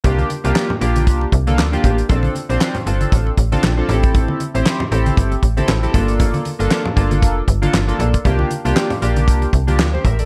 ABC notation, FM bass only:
X:1
M:4/4
L:1/16
Q:"Swing 16ths" 1/4=117
K:Cmix
V:1 name="FM bass" clef=bass
C,,2 z C,, z2 B,,,2 C,,2 C,,2 D,,2 A,,,2 | B,,,2 z B,,, z2 G,,,2 A,,,2 A,,,2 B,,,2 A,,,2- | A,,,2 z A,,, z2 A,,,2 G,,,2 A,,,2 A,,,2 G,,,2- | G,,,2 z G,,, z2 G,,,2 F,,,2 G,,,2 G,,,2 B,,,2 |
C,,2 z C,, z2 B,,,2 C,,2 C,,2 D,,2 A,,,2 |]